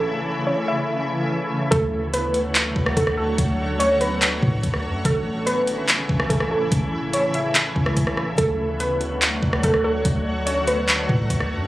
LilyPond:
<<
  \new Staff \with { instrumentName = "Synth pluck" } { \time 4/4 \key d \lydian \tempo 4 = 144 r4 cis''8 e''4. r4 | a'4 b'2 a'8 a'8 | r4 cis''8 b'4. r4 | a'4 b'2 a'8 a'8 |
r4 cis''8 e''4. r4 | a'4 b'2 a'8 a'8 | r4 cis''8 b'4. r4 | }
  \new Staff \with { instrumentName = "Synth texture" } { \time 4/4 \key d \lydian <cis' a' gis''>1 | <d' cis'' fis''>1~ | <d' cis'' fis''>1 | <cis' a' gis''>1~ |
<cis' a' gis''>1 | <d' cis'' fis''>1~ | <d' cis'' fis''>1 | }
  \new Staff \with { instrumentName = "Ambient pad" } { \time 4/4 \key d \lydian <cis e a e'>1 | <d fis a fis' cis''>1~ | <d fis a fis' cis''>1 | <cis e a e'>1~ |
<cis e a e'>1 | <d fis fis' cis''>1~ | <d fis fis' cis''>1 | }
  \new Staff \with { instrumentName = "808-style bass" } { \clef bass \time 4/4 \key d \lydian r1 | d,2~ d,8 d,8 d,4 | d,2~ d,8 a,8 d,8 fis,8 | a,,4~ a,,16 gis,,4~ gis,,16 a,,8 a,,4 |
a,,2~ a,,8 cis,8 a,,4 | d,2~ d,8 d,8 d,4 | d,2~ d,8 a,8 d,8 fis,8 | }
  \new DrumStaff \with { instrumentName = "Drums" } \drummode { \time 4/4 r4 r4 r4 r4 | <hh bd>4 hh8 hh8 <hc hh>8 bd16 ss16 <hh bd>16 ss8. | <hh bd>4 hh8 hh8 <hc hh>8 bd8 <hh bd>16 ss8. | <hh bd>4 hh8 hh8 <hc hh>8 bd16 ss16 <hh bd>16 ss8. |
<hh bd>4 hh8 hh8 <hc hh>8 bd16 ss16 <hh bd>16 ss16 ss8 | <hh bd>4 hh8 hh8 <hc hh>8 bd16 ss16 <hh bd>16 ss8. | <hh bd>4 hh8 hh8 <hc hh>8 bd8 <hh bd>16 ss8. | }
>>